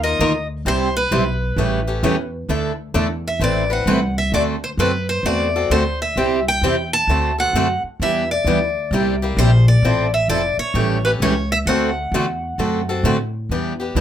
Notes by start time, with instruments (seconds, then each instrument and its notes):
Already playing: upright bass D#2
0.03 steel-string acoustic guitar D#4 F4 A#4 D#5
0.19 upright bass D2, steel-string acoustic guitar D#3 A#3 D#4 F4 A#4
0.65 upright bass C2, steel-string acoustic guitar C3 G3 C4 E4 G4 C5
0.97 steel-string acoustic guitar B4
1.11 upright bass B1, steel-string acoustic guitar C3 G3 C4 E4 G4
1.56 upright bass A1, steel-string acoustic guitar C#3 E3 G3 A3 C#4 E4 G4 A4
1.87 steel-string acoustic guitar A3 C#4 G4
2.03 upright bass E2, steel-string acoustic guitar C#3 E3 G3 A3 C#4 E4 G4 A4
2.49 upright bass D2, steel-string acoustic guitar D3 A3 D4 E4 A4
2.94 upright bass E2, steel-string acoustic guitar D3 A3 D4 E4 A4
3.28 steel-string acoustic guitar E5
3.40 upright bass A1, steel-string acoustic guitar E3 A3 C4 E4 B4
3.44 steel-string acoustic guitar D5
3.70 steel-string acoustic guitar C4 E4 B4 F#5
3.86 upright bass C2, steel-string acoustic guitar E3 A3 C4 E4 B4
4.18 steel-string acoustic guitar E5
4.32 upright bass D2, steel-string acoustic guitar D3 A3 C4 F#4 A4 D5
4.64 steel-string acoustic guitar C5
4.77 upright bass F#2, steel-string acoustic guitar D3 A3 C4 F#4 A4 B4
5.09 steel-string acoustic guitar C5
5.23 upright bass E2, steel-string acoustic guitar D3 A3 C4 F#4 A4 D5
5.56 steel-string acoustic guitar C4 F#4 A4
5.70 upright bass D2, steel-string acoustic guitar D3 A3 C4 F#4 A4 C5
6.02 steel-string acoustic guitar E5
6.16 upright bass C2, steel-string acoustic guitar C3 G3 C4 E4 G4
6.48 steel-string acoustic guitar G5
6.62 upright bass E2, steel-string acoustic guitar C3 G3 C4 E4 G4
6.93 steel-string acoustic guitar A5
7.08 upright bass D2, steel-string acoustic guitar D3 A3 C4 F#4 A4
7.38 steel-string acoustic guitar C4 F#4 A4 F#5
7.53 upright bass F#2, steel-string acoustic guitar D3 A3 C4 F#4 A4
7.83 muted upright bass stroke
8.00 upright bass E2, steel-string acoustic guitar E3 G3 B3 D4 E4 G4 B4 E5
8.31 steel-string acoustic guitar D5
8.45 upright bass D2, steel-string acoustic guitar E3 G3 B3 D4 E4 G4 B4
8.91 upright bass C2, steel-string acoustic guitar C3 G3 A#3 E4 G4
9.22 steel-string acoustic guitar A#3 E4 G4
9.37 upright bass A#1, steel-string acoustic guitar C3 G3 A#3 E4 G4 C5
9.68 steel-string acoustic guitar D5
9.82 upright bass A1, steel-string acoustic guitar F3 C4 E4 A4
10.14 steel-string acoustic guitar E5
10.28 upright bass F1, steel-string acoustic guitar F3 C4 E4 A4 D5
10.58 steel-string acoustic guitar C#5, muted upright bass stroke
10.74 upright bass A1, steel-string acoustic guitar C#3 E3 G3 A3 C#4 E4 G4 A4
11.05 steel-string acoustic guitar A3 C#4 G4 B4
11.20 upright bass C#2, steel-string acoustic guitar C#3 E3 G3 A3 C#4 E4 G4 A4 C#5
11.52 steel-string acoustic guitar E5
11.66 upright bass D2, steel-string acoustic guitar D3 A3 C4 F#4 A4 F#5
12.12 upright bass E2, steel-string acoustic guitar D3 A3 C4 F#4 A4
12.58 upright bass F#2, steel-string acoustic guitar D3 A3 C4 F#4 A4
12.89 steel-string acoustic guitar C4 F#4 A4
13.03 upright bass A2, steel-string acoustic guitar D3 A3 C4 F#4 A4
13.49 upright bass E2, steel-string acoustic guitar E3 G3 B3 D4 E4 G4 B4
13.80 steel-string acoustic guitar B3 D4 G4
13.95 upright bass D2, steel-string acoustic guitar E3 G3 B3 D4 E4 G4 B4